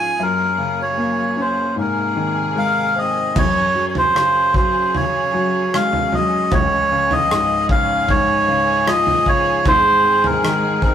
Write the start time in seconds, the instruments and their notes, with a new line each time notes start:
Already playing: grand piano G#2 F4 G#4, string section G#2 F3 C#4 G#4, melodica G#5
0.19 grand piano F#2, string section F#3 A#3, melodica A#4
0.58 grand piano C#3
0.82 melodica C#5
0.98 grand piano A#3
1.37 grand piano C#4
1.41 melodica C5
1.76 grand piano G#2, string section C3 G#4, melodica A#4
2.16 grand piano D#3
2.56 grand piano G#3, melodica F5
2.96 grand piano C4, melodica D#5
3.35 grand piano F#2, string section F#3 C#4 G#4, melodica C#5, kick, floor tom, crash
3.75 grand piano F#3
3.90 melodica C#5
3.95 melodica C5, floor tom
4.15 grand piano C#3, cross-stick
4.54 grand piano F#3, melodica C5, kick
4.94 grand piano C#3, melodica C#5, floor tom
5.34 grand piano F#3
5.73 grand piano G#3, melodica F5, cross-stick
5.93 floor tom
6.12 grand piano F#3, melodica D#5, floor tom
6.52 grand piano C#2, string section F3 G#4, melodica C#5, kick, floor tom
6.91 grand piano C#3
7.11 melodica D#5, floor tom
7.30 grand piano G#2, cross-stick
7.69 grand piano C#3, melodica F5, kick
8.08 grand piano G#2, melodica C#5, kick, floor tom
8.48 grand piano C#3
8.87 grand piano F3, melodica D#5, cross-stick
9.07 floor tom
9.26 grand piano C#3, melodica C#5, kick
9.65 steel-string acoustic guitar G#2 D#3 G#3 C4 D#4 G#4, grand piano G#2, string section G#3 D#4, melodica C5, kick, floor tom
10.04 grand piano C4
10.24 melodica A#4, floor tom
10.43 grand piano D#3, steel-string acoustic guitar G#3 C4 D#4 G#4, cross-stick
10.82 grand piano C4, melodica A#4, kick